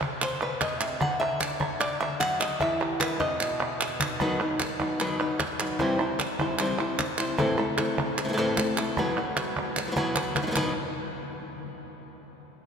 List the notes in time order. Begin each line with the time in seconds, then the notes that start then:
Already playing: C3
0.01 cajon bass, clap
0.21 C5, clap
0.41 B4, clap
0.61 B2 D#5, cajon bass, cajon slap, clap
0.80 C3 E5, clap
1.00 D3 F#5, cajon bass, clap
1.20 E5, cajon slap, clap
1.40 D5, cajon slap, clap
1.60 C#5, cajon bass, clap
1.80 D5, clap
2.00 E5, clap
2.20 F#3 F#5, cajon slap, clap
2.40 D#5, clap
2.60 E3 E5, cajon bass, cajon slap, clap
2.80 G4, cajon slap, clap
3.00 D#3 B4, cajon slap, clap
3.20 C3 D#5, cajon bass, cajon slap, clap
3.40 B2, clap
3.60 cajon slap, clap
3.81 B4, clap
4.00 D#4, cajon bass, clap
4.20 B2 D#3 F#3 B3 D#4 B4, cajon bass, cajon slap, clap
4.40 F#3 B3 D#4 B4, clap
4.60 muted nylon-string guitar stroke, cajon slap, clap
4.79 F#3 B3 D#4 B4, cajon bass, cajon slap, clap
5.00 B2 D#3 F#3 B3 D#4 B4, clap
5.20 F#3 B3 D#4 B4, clap
5.39 muted nylon-string guitar stroke, cajon bass, cajon slap, clap
5.60 F#3 B3 D#4 B4, clap
5.79 C3 E3 G3 C4 E4 C5, cajon bass, cajon slap, clap
6.00 G3 C4 E4 C5, clap
6.19 muted nylon-string guitar stroke, cajon slap, clap
6.39 G3 C4 E4 C5, cajon bass, clap
6.59 C3 E3 G3 C4 E4 C5, clap
6.79 G3 C4 E4 C5, clap
6.99 muted nylon-string guitar stroke, cajon bass, cajon slap, clap
7.18 G3 C4 E4 C5, clap
7.38 A2 E3 A3 C4 E4 A4, cajon bass, clap
7.58 A3 C4 E4 A4, cajon slap, clap
7.78 A3 C4 E4 A4, cajon slap, clap
7.98 cajon bass, clap
8.18 muted nylon-string guitar stroke, clap
8.24 E3 A3 C4 E4 A4
8.28 E3 A3 C4 E4 A4
8.33 E3 A3 C4 E4 A4
8.37 A2 E3 A3 C4 E4 A4, clap
8.57 A3 C4 E4 A4, cajon bass, cajon slap, clap
8.77 A3 C4 E4 A4, clap
8.97 B2 E3 F#3 B3 F#4 B4, cajon bass, cajon slap, clap
9.17 F#3 B3 F#4 B4, cajon slap, clap
9.37 F#3 B3 F#4 B4, cajon slap, clap
9.56 cajon bass, cajon slap, clap
9.76 muted nylon-string guitar stroke, cajon slap, clap
9.87 E3 F#3 B3 F#4 B4
9.91 E3 F#3 B3 F#4 B4
9.96 B2 E3 F#3 B3 F#4 B4, cajon bass, clap
10.15 F#3 B3 F#4 B4, cajon bass, clap
10.35 F#3 B3 F#4 B4, cajon bass, clap
10.42 D#3 F#3 B3 D#4 B4
10.47 D#3 F#3 B3 D#4 B4
10.51 D#3 F#3 B3 D#4 B4
10.56 B2 D#3 F#3 B3 D#4 B4, cajon bass, clap